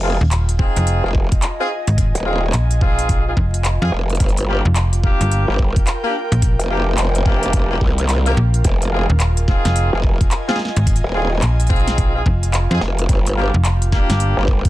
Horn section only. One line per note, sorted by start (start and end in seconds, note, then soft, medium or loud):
0.03 0.18 C4 medium
0.03 0.18 D#4 medium
0.03 0.18 F4 medium
0.03 0.18 G#4 medium
0.59 1.00 C4 medium
0.59 1.00 D#4 medium
0.59 1.00 F4 medium
0.59 1.00 G#4 loud
1.04 1.09 C4 medium
1.04 1.09 D#4 medium
1.04 1.09 F4 medium
1.04 1.09 G#4 medium
1.60 1.68 C4 medium
1.60 1.68 D#4 medium
1.60 1.68 F4 medium
1.60 1.68 G#4 loud
2.26 2.40 C4 medium
2.26 2.40 D#4 medium
2.26 2.40 F4 medium
2.26 2.40 G#4 medium
2.82 3.22 C4 medium
2.82 3.22 D#4 medium
2.82 3.22 F4 medium
2.82 3.22 G#4 medium
3.27 3.32 C4 medium
3.27 3.32 D#4 medium
3.27 3.32 F4 medium
3.27 3.32 G#4 medium
3.82 3.91 C4 medium
3.82 3.91 D#4 medium
3.82 3.91 F4 medium
3.82 3.91 G#4 loud
4.48 4.62 A#3 medium
4.48 4.62 D4 medium
4.48 4.62 F4 medium
4.48 4.62 G4 medium
5.03 5.44 A#3 medium
5.03 5.44 D4 medium
5.03 5.44 F4 medium
5.03 5.44 G4 medium
5.48 5.54 A#3 medium
5.48 5.54 D4 medium
5.48 5.54 F4 medium
5.48 5.54 G4 medium
6.04 6.13 A#3 medium
6.04 6.13 D4 medium
6.04 6.13 F4 medium
6.04 6.13 G4 loud
6.70 6.84 A#3 medium
6.70 6.84 D4 medium
6.70 6.84 F4 medium
6.70 6.84 G4 medium
7.26 7.67 A#3 medium
7.26 7.67 D4 medium
7.26 7.67 F4 medium
7.26 7.67 G4 medium
7.71 7.76 A#3 medium
7.71 7.76 D4 medium
7.71 7.76 F4 medium
7.71 7.76 G4 medium
8.26 8.35 A#3 medium
8.26 8.35 D4 medium
8.26 8.35 F4 medium
8.26 8.35 G4 loud
8.92 9.07 C4 medium
8.92 9.07 D#4 medium
8.92 9.06 F4 medium
8.92 9.07 G#4 medium
9.48 9.89 C4 medium
9.48 9.89 D#4 medium
9.48 9.89 F4 medium
9.48 9.89 G#4 medium
9.93 9.98 C4 medium
9.93 9.98 D#4 medium
9.93 9.98 F4 medium
9.93 9.98 G#4 medium
10.48 10.57 C4 loud
10.48 10.57 D#4 medium
10.48 10.57 F4 medium
10.48 10.57 G#4 loud
11.14 11.29 C4 medium
11.14 11.29 D#4 medium
11.14 11.29 F4 medium
11.14 11.29 G#4 medium
11.70 12.11 C4 medium
11.70 12.11 D#4 medium
11.70 12.11 F4 medium
11.70 12.11 G#4 loud
12.15 12.20 C4 medium
12.15 12.20 D#4 medium
12.15 12.20 F4 medium
12.15 12.20 G#4 medium
12.71 12.79 C4 loud
12.71 12.79 D#4 medium
12.71 12.79 F4 medium
12.71 12.79 G#4 loud
13.37 13.51 A#3 medium
13.37 13.51 D4 medium
13.37 13.51 F4 medium
13.37 13.51 G4 medium
13.92 14.33 A#3 medium
13.92 14.33 D4 medium
13.92 14.33 F4 medium
13.92 14.33 G4 medium
14.37 14.43 A#3 medium
14.37 14.43 D4 medium
14.37 14.43 F4 medium
14.37 14.43 G4 medium